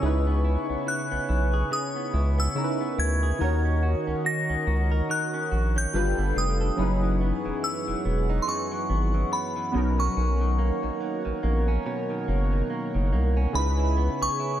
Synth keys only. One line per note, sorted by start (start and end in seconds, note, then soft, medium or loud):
0.00 2.51 C#3 medium
0.00 2.51 C#4 medium
0.00 2.52 D#4 medium
0.00 2.53 E4 medium
0.05 2.53 B4 medium
2.55 3.40 C#3 soft
2.55 3.40 C#4 soft
2.55 3.39 D#4 soft
2.55 3.41 E4 soft
2.55 2.64 A#4 soft
2.64 3.45 B4 medium
3.39 5.89 D#3 medium
3.39 5.90 D#4 medium
3.39 5.90 F#4 medium
3.39 5.91 A#4 medium
3.44 5.92 C#5 medium
5.93 6.78 G3 medium
5.93 6.78 D4 medium
5.93 6.79 F4 medium
5.93 6.79 A4 medium
5.93 6.79 B4 medium
6.76 9.69 F#3 medium
6.76 9.70 C#4 medium
6.76 9.70 D#4 medium
6.76 9.71 E4 medium
6.81 9.71 G#4 medium
6.81 9.72 B4 medium
9.72 13.08 F#3 medium
9.72 13.07 B3 medium
9.72 13.09 C#4 medium
9.76 13.09 D#4 medium
9.76 13.10 A#4 medium
13.53 14.60 C#3 medium
13.53 14.60 C#4 medium
13.53 14.60 D#4 medium
13.53 14.60 E4 medium
13.58 14.60 B4 medium